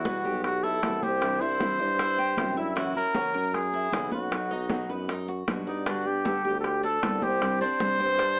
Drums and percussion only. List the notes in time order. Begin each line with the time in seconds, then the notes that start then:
0.05 high bongo, high conga
0.25 high conga
0.44 high bongo, high conga
0.64 high conga
0.83 high bongo, low bongo, high conga
1.03 high conga
1.22 high bongo, high conga
1.41 high bongo, high conga
1.60 high bongo, high conga
1.80 high bongo, high conga
1.99 high bongo, high conga
2.18 high conga
2.37 high bongo, low bongo, high conga
2.57 high bongo, high conga
2.76 high bongo, high conga
2.95 high conga
3.15 high bongo, high conga
3.35 high conga
3.54 high bongo, high conga
3.73 high conga
3.92 high bongo, low bongo, high conga
4.12 high conga
4.31 high bongo, high conga
4.50 high bongo, high conga
4.70 high bongo, high conga
4.89 high bongo, high conga
5.08 high bongo, high conga
5.28 high conga
5.48 high bongo, low bongo, high conga
5.67 high bongo, high conga
5.86 high bongo, high conga
6.06 high conga
6.25 high bongo, high conga
6.45 high conga
6.64 high bongo, high conga
6.84 high conga
7.03 high bongo, low bongo, high conga
7.22 high conga
7.42 high bongo, high conga
7.61 high bongo, high conga
7.80 high bongo, high conga
8.00 high bongo, high conga
8.19 high bongo, high conga